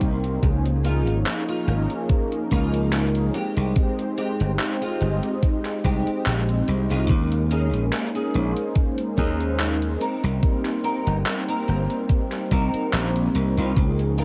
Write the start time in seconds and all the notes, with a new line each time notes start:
Already playing: C2 G3 A#3 C4 D#4 A#4 C5 G5 C6
0.01 kick, closed hi-hat
0.24 closed hi-hat
0.42 C#2 F3 A#3 C#4 D#4 G#4 F5 C#6, kick, closed hi-hat
0.66 closed hi-hat
0.84 A#3 D#4 F4, closed hi-hat
1.07 G#1, closed hi-hat
1.26 clap, closed hi-hat
1.48 A#3 D#4 F4, closed hi-hat
1.67 G#1 F3 A#3 C#4 D#4 A#4, closed hi-hat
1.90 closed hi-hat
2.09 kick, closed hi-hat
2.32 closed hi-hat
2.51 C#2 A#3 D#4 F4, kick, closed hi-hat
2.74 closed hi-hat
2.93 clap, closed hi-hat
3.15 closed hi-hat
3.34 G#3 C4 G4 G5 C6, closed hi-hat
3.57 C2, closed hi-hat
3.75 G#3 C4 D#4 G4 C5, kick, closed hi-hat
3.99 closed hi-hat
4.18 G#3 C4 G4, closed hi-hat
4.40 G1, closed hi-hat
4.59 clap, closed hi-hat
4.82 G#3 C4 F4, closed hi-hat
5.00 G1 G#3 C4 D#4 G4 D#5, closed hi-hat
5.23 closed hi-hat
5.43 kick, closed hi-hat
5.65 clap, closed hi-hat
5.84 C2 G#3 C4 G4, kick, closed hi-hat
6.07 muted slap bass stroke, closed hi-hat
6.26 A#1, clap, closed hi-hat
6.49 closed hi-hat
6.68 C2, closed hi-hat
6.90 C2 G#3 C4 F4, closed hi-hat
7.08 D#2 G#3 A#3 C#4 D#4 A#4 G#5, kick, closed hi-hat
7.32 closed hi-hat
7.51 C#4 D#4 G#4, closed hi-hat
7.74 A#1, closed hi-hat
7.93 clap, closed hi-hat
8.15 C#4 D#4 G#4, closed hi-hat
8.33 A#1 G#3 A#3 C#4 D#4 C5, closed hi-hat
8.57 closed hi-hat
8.76 kick, closed hi-hat
8.98 closed hi-hat
9.17 D#2 C#4 D#4 G#4, kick, closed hi-hat
9.40 closed hi-hat
9.59 clap, closed hi-hat
9.82 closed hi-hat
10.01 C4 D#4 A#4 G5 C6, closed hi-hat
10.24 C2, closed hi-hat
10.41 G3 A#3 C4 D#4 A#4, kick, closed hi-hat
10.65 clap, closed hi-hat
10.84 C4 D#4 A#4, closed hi-hat
11.07 G1, closed hi-hat
11.26 clap, closed hi-hat
11.48 C4 D#4 A#4, closed hi-hat
11.67 G1 G3 A#3 C4 D#4 C5 A#5, closed hi-hat
11.90 closed hi-hat
12.09 kick, closed hi-hat
12.32 clap, closed hi-hat
12.51 C2 C4 D#4 A#4, kick, closed hi-hat
12.74 muted slap bass stroke, closed hi-hat
12.93 A#1, clap, closed hi-hat
13.15 closed hi-hat
13.35 C2, closed hi-hat
13.57 C2 C4 D#4 F4, closed hi-hat
13.75 C#2 F3 A#3 C#4 D#4 G#4 F5 C#6, kick, closed hi-hat
13.99 closed hi-hat
14.18 D#4 F4 A#4, closed hi-hat